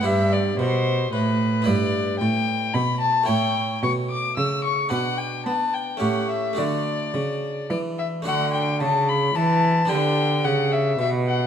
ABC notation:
X:1
M:3/4
L:1/8
Q:1/4=110
K:Em
V:1 name="Violin"
e d c2 B2 | [K:D] d2 g2 b a | g2 c' d' e' c' | f g a g f e |
d4 d e | f g a b a2 | g2 f e e f |]
V:2 name="Harpsichord"
[B,EG]6 | [K:D] [B,EB]6 | [A,Ec]6 | [DB]4 [A,CG]2 |
[A,DF]6 | [A,DF]6 | [B,DG]6 |]
V:3 name="Harpsichord" clef=bass
G,,2 B,,2 A,,2 | [K:D] G,,2 A,,2 B,,2 | A,,2 B,,2 C,2 | B,,2 B,2 A,,2 |
D,2 C,2 E,2 | D,2 C,2 E,2 | D,2 C,2 B,,2 |]
V:4 name="Cello" clef=bass
G,,2 B,,2 A,,2 | [K:D] G,,2 A,,2 B,,2 | A,,2 B,,2 C,2 | B,,2 B,2 A,,2 |
D,2 C,2 E,2 | D,2 C,2 E,2 | D,2 C,2 B,,2 |]